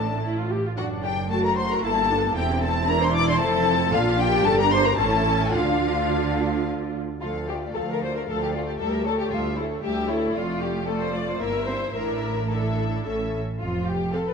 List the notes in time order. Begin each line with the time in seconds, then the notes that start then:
Already playing: A1 A2 D4 A4 A5
0.23 E4
0.38 F4
0.51 G4
0.65 F4
0.77 F#1 F#2 D4 F#4 F#5
1.03 G4 G5
1.30 A3 F#4 A4 A5
1.43 A#4 A#5
1.57 C5 C6
1.70 A#4 A#5
1.83 G1 G2 A#3 E4 A4 A5
2.10 D4
2.36 E1 E2 C4 E4 G4 G5
2.61 A4 A5
2.88 D4 A#4 A#5
3.01 C5 C6
3.14 D5 D6
3.28 C5 C6
3.40 F1 F2 C4 A4 A5
3.92 A#1 A#2 D4 F4 F5
4.19 G4 G5
4.44 G1 G2 G4 A4 A5
4.58 A#4 A#5
4.71 C5 C6
4.84 A#4 A#5
4.97 A1 A2 C#4 E4 A4 A5
5.25 C#4
5.53 D2 D3 D4 F4 F5
7.21 D2 F3 F4 A4 F5
7.48 A3 F4 G4 D5
7.75 D2 F3 A4 F5
7.90 A#4
8.02 A3 F4 C5 D5
8.16 A#4
8.28 D2 F3 A4 F5
8.42 G4
8.53 A3 F4 D5
8.66 G4
8.79 D2 G3 G4 A4 E5
8.93 A#4
9.05 A3 A4 C#5
9.18 G4
9.30 D2 G3 F4 G4 E5
9.56 A3 E4 A4 C#5
9.83 D2 G3 G4 E5
10.08 A3 E4 A4 C#5
10.33 F1 F2 A3 F4 D5
10.61 G4
10.87 A3 F4 A4 D5
11.01 C5
11.13 D5
11.28 C5
11.39 G1 G2 A#3 E4 A#4 E5
11.67 C4 C5
11.94 A1 A2 D4 E4 A#4 E5
12.50 D4 E4 A4 E5
13.05 A1 A2 C#4 A4 E5
13.60 F1 F2 F4
13.87 G4
14.13 C4 A4 F5
14.28 B4